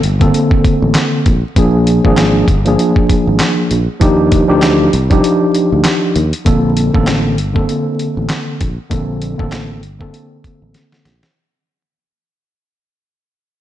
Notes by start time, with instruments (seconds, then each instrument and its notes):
0.03 fretless electric bass G1, closed hi-hat
0.19 tine electric piano D3 A#3 C4 A4, kick, closed hi-hat
0.34 closed hi-hat
0.51 kick
0.65 kick, closed hi-hat
0.82 fretless electric bass A1
0.95 snare, clap, closed hi-hat
1.26 fretless electric bass A#1, kick, closed hi-hat
1.56 fretless electric bass A#1, tine electric piano F3 A#3 D4 G#4, kick, closed hi-hat
1.87 closed hi-hat
2.04 fretless electric bass G#1, tine electric piano F3 A#3 D4 G#4, kick
2.18 snare, clap, closed hi-hat
2.48 fretless electric bass G1, kick, closed hi-hat
2.65 tine electric piano F3 A#3 D4 G#4, closed hi-hat
2.79 closed hi-hat
2.96 kick
3.09 kick, closed hi-hat
3.27 fretless electric bass G#1
3.40 snare, clap, closed hi-hat
3.71 fretless electric bass A#1, closed hi-hat
4.00 fretless electric bass D#2, tine electric piano F3 D4 D#4 G4, kick, closed hi-hat
4.32 kick, closed hi-hat
4.47 fretless electric bass D2, tine electric piano F3 D4 D#4 G4
4.62 snare, clap, closed hi-hat
4.93 fretless electric bass C2, closed hi-hat
5.10 tine electric piano F3 D4 D#4 G4, kick, closed hi-hat
5.24 closed hi-hat
5.54 closed hi-hat
5.72 fretless electric bass D2
5.84 snare, clap, closed hi-hat
6.16 fretless electric bass D#2, closed hi-hat
6.33 closed hi-hat
6.45 fretless electric bass A#1, tine electric piano D3 A#3 C4 A4, kick, closed hi-hat
6.77 closed hi-hat
6.93 fretless electric bass A1, tine electric piano D3 A#3 C4 A4, kick
7.07 snare, clap, closed hi-hat
7.38 fretless electric bass G1, closed hi-hat
7.54 tine electric piano D3 A#3 C4 A4, kick
7.69 closed hi-hat
7.99 closed hi-hat
8.17 fretless electric bass A1
8.29 snare, clap, closed hi-hat
8.61 fretless electric bass A#1, kick, closed hi-hat
8.89 fretless electric bass A#1, tine electric piano D3 A#3 C4 A4, kick, closed hi-hat
9.22 closed hi-hat
9.38 fretless electric bass A1, tine electric piano D3 A#3 C4 A4, kick
9.52 snare, clap, closed hi-hat
9.83 fretless electric bass G1, closed hi-hat
9.99 tine electric piano D3 A#3 C4 A4, kick
10.14 closed hi-hat
10.44 kick, closed hi-hat
10.62 fretless electric bass A1
10.74 snare, closed hi-hat
10.92 snare
11.05 fretless electric bass A#1, snare, closed hi-hat
11.23 snare